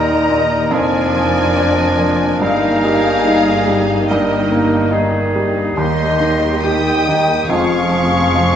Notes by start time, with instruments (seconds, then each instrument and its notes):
Already playing: grand piano D#2 A#2 D#4, cello section D#2, double bass section D#2, bassoon G3, french horn section A#3 D#4, viola section A#3 D#4, clarinet D#4, oboe A#4, flute section D#5, violin section D#5 A#5
0.29 grand piano A#2
0.70 double bass section F1, grand piano F2, cello section F2, bassoon F3, french horn section A#3, viola section A#3 D4, clarinet D4, oboe A#4, flute section D5, violin section D5 G#5
1.15 grand piano F3
1.54 french horn section D4, grand piano D4
1.99 grand piano F3
2.39 double bass section G1, grand piano G2, french horn section D#4, clarinet D#4, violin section G#4 F5, oboe A#4
2.43 cello section G2, bassoon D#3, viola section D#4, flute section G#4
2.85 grand piano G3
3.27 grand piano D#4
3.68 grand piano G3
4.08 grand piano G2, bassoon D#3, clarinet D#4, flute section G4, violin section G4 D#5, oboe A#4
4.51 grand piano A#3
4.91 grand piano D#4, oboe G#4
5.36 grand piano G3
5.76 grand piano D#2, cello section D#2, double bass section D#2, bassoon D#3, french horn section G3 D#4, viola section G3 G4, clarinet D#4, oboe G4, flute section D#5, violin section D#5 C6
6.20 grand piano D#3
6.62 clarinet D#4, grand piano G4, oboe G4, flute section G5, violin section G5 D#6
6.67 bassoon D#3
7.09 grand piano D#3
7.49 double bass section F1, grand piano F2, cello section F2, bassoon F3, french horn section G#3 F4, viola section G#3 F4, clarinet C#4, oboe G#4, flute section F5, violin section F5 C#6
7.92 grand piano F3
8.35 grand piano F4